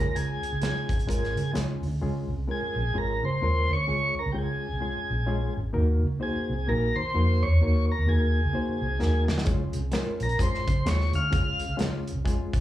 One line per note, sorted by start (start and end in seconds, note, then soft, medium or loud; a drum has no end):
0.00 0.13 C#2 medium
0.00 0.50 G#3 medium
0.00 0.50 C#4 medium
0.00 0.50 F4 medium
0.00 0.53 G#4 medium
0.00 0.17 A#4 medium
0.15 0.38 C#2 loud
0.15 1.52 G#4 medium
0.15 closed hi-hat medium
0.43 closed hi-hat medium
0.52 0.60 C#2 medium
0.61 0.84 C#3 medium
0.61 0.93 G#3 medium
0.61 0.94 C#4 medium
0.61 0.94 F4 medium
0.61 0.94 G#4 medium
0.61 snare loud
0.61 closed hi-hat medium
0.89 1.05 G#1 medium
0.89 kick medium
0.89 closed hi-hat medium
1.00 closed hi-hat soft
1.07 1.31 G#1 medium
1.07 1.40 G#3 medium
1.07 1.40 C#4 medium
1.07 1.40 F4 medium
1.07 1.41 A#4 medium
1.07 kick medium
1.07 closed hi-hat medium
1.23 snare soft
1.36 1.52 C#3 loud
1.36 closed hi-hat medium
1.53 1.78 C#2 medium
1.53 1.86 G#3 medium
1.53 1.86 C#4 medium
1.53 1.86 F4 medium
1.53 1.87 G#4 medium
1.53 snare loud
1.53 closed hi-hat medium
1.83 1.99 D2 medium
1.83 open hi-hat soft
2.01 2.24 C#2 loud
2.01 2.33 G#3 medium
2.01 2.33 C#4 medium
2.01 2.34 F4 medium
2.01 2.34 G#4 medium
2.29 2.45 C2 medium
2.48 2.80 G#3 medium
2.48 2.80 C#4 medium
2.48 2.80 F4 medium
2.48 2.98 G#4 medium
2.48 2.80 A#4 medium
2.62 muted fingered electric bass stroke soft
2.76 2.91 A#1 medium
2.94 3.17 G#1 medium
2.94 3.26 G#3 medium
2.94 3.27 C#4 medium
2.94 3.27 F4 medium
2.94 3.27 G#4 medium
2.94 3.25 A#4 medium
3.23 3.39 C#3 medium
3.23 3.72 C5 medium
3.41 3.64 D#2 medium
3.41 3.73 G#3 medium
3.41 3.74 C#4 medium
3.41 3.74 F4 medium
3.41 3.74 A#4 medium
3.70 3.85 D2 medium
3.70 4.15 C#5 loud
3.87 4.11 C#2 medium
3.87 4.19 G#3 medium
3.87 4.20 C#4 medium
3.87 4.20 F4 medium
3.87 4.20 G#4 medium
4.19 4.31 A#4 medium
4.26 4.34 C#2 loud
4.32 4.66 C#2 medium
4.32 4.66 G#3 medium
4.32 4.66 C#4 medium
4.32 4.66 F4 medium
4.32 4.37 G4 medium
4.32 4.66 G#4 medium
4.38 5.53 G#4 medium
4.73 4.80 C2 medium
4.80 5.13 G#3 medium
4.80 5.13 C#4 medium
4.80 5.13 F4 medium
4.80 5.13 G#4 medium
4.97 muted fingered electric bass stroke soft
5.10 5.48 A#1 medium
5.26 5.59 G#3 medium
5.26 5.59 C#4 medium
5.26 5.59 F4 medium
5.26 5.60 G#4 medium
5.57 5.72 G#1 medium
5.73 5.97 D#2 loud
5.73 6.05 A#3 medium
5.73 6.06 D#4 medium
5.73 6.06 F#4 medium
5.73 6.06 A#4 medium
6.03 6.18 C#2 medium
6.20 6.52 A#3 medium
6.20 6.52 D#4 medium
6.20 6.53 F#4 medium
6.20 6.70 G#4 medium
6.20 6.53 C5 medium
6.36 muted fingered electric bass stroke soft
6.50 6.65 C2 medium
6.67 6.90 A#1 loud
6.67 6.99 A#3 medium
6.67 7.00 D#4 medium
6.67 7.00 F#4 medium
6.67 6.97 A#4 medium
6.67 7.00 A#4 medium
6.96 7.11 D#3 medium
6.96 7.44 C5 loud
7.14 7.37 F2 medium
7.14 7.46 A#3 medium
7.14 7.46 D#4 medium
7.14 7.46 F#4 medium
7.14 7.46 A#4 medium
7.43 7.58 E2 medium
7.43 7.86 C#5 loud
7.61 7.84 D#2 loud
7.61 7.93 A#3 medium
7.61 7.93 D#4 medium
7.61 7.93 F#4 medium
7.61 7.93 A#4 medium
7.92 8.10 A#4 medium
7.99 8.06 D#2 medium
8.07 8.38 D#2 medium
8.07 8.39 A#3 medium
8.07 8.39 D#4 medium
8.07 8.39 F#4 medium
8.07 9.25 G#4 medium
8.07 8.39 A#4 medium
8.45 8.53 C#2 medium
8.53 8.85 A#3 medium
8.53 8.85 D#4 medium
8.53 8.86 F#4 medium
8.53 8.86 C5 medium
8.68 muted fingered electric bass stroke soft
8.81 8.97 C2 medium
8.99 9.23 D#2 medium
8.99 9.32 A#3 medium
8.99 9.32 D#4 medium
8.99 9.32 F#4 medium
8.99 9.32 A#4 medium
8.99 snare medium
9.28 9.44 D2 medium
9.28 snare medium
9.38 snare medium
9.45 9.69 C#2 loud
9.45 9.78 G#3 medium
9.45 9.78 C#4 medium
9.45 9.78 F4 medium
9.45 9.79 G#4 medium
9.45 kick loud
9.45 closed hi-hat medium
9.73 9.90 C2 medium
9.73 closed hi-hat medium
9.92 10.24 G#3 medium
9.92 10.25 C#4 medium
9.92 10.25 F4 medium
9.92 10.25 A#4 medium
9.92 snare loud
9.92 closed hi-hat medium
10.07 muted fingered electric bass stroke soft
10.20 10.36 A#1 medium
10.20 10.42 A#4 medium
10.20 closed hi-hat medium
10.29 closed hi-hat medium
10.39 10.62 G#1 medium
10.39 10.71 G#3 medium
10.39 10.71 C#4 medium
10.39 10.72 F4 medium
10.39 10.72 G#4 medium
10.39 10.89 C5 medium
10.39 kick medium
10.39 closed hi-hat medium
10.54 snare soft
10.68 10.83 C#3 loud
10.68 kick medium
10.68 closed hi-hat medium
10.85 11.08 D#2 medium
10.85 11.17 G#3 medium
10.85 11.17 C#4 medium
10.85 11.18 F4 medium
10.85 11.18 G#4 medium
10.85 11.13 C#5 medium
10.85 snare loud
10.85 closed hi-hat medium
11.01 snare soft
11.13 11.29 D2 loud
11.13 11.76 F5 loud
11.13 closed hi-hat medium
11.31 11.55 C#2 medium
11.31 11.63 G#3 medium
11.31 11.64 C#4 medium
11.31 11.64 F4 medium
11.31 11.64 G#4 medium
11.31 kick loud
11.31 closed hi-hat medium
11.60 closed hi-hat medium
11.69 11.77 C#2 medium
11.77 12.09 C#2 medium
11.77 12.10 G#3 medium
11.77 12.10 C#4 medium
11.77 12.10 F4 medium
11.77 12.11 G#4 medium
11.77 snare loud
11.77 closed hi-hat loud
12.07 closed hi-hat medium
12.15 12.23 C2 medium
12.25 12.57 G#3 medium
12.25 12.57 C#4 medium
12.25 12.57 F4 medium
12.25 12.57 G#4 medium
12.25 kick medium
12.25 closed hi-hat medium
12.39 muted fingered electric bass stroke soft
12.53 12.60 A#1 medium
12.53 kick medium
12.53 closed hi-hat medium